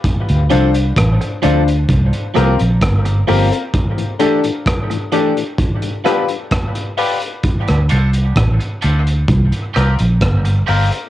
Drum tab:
HH |xxxxxxxxxxxxxxox|xxxxxxxxxxxxxxox|xxxxxxxxxxxxxxox|
SD |----r-----r-r---|----r-----r-r---|-r--r-----r-r---|
BD |o---o---o---o---|o---o---o---o---|o---o---o---o---|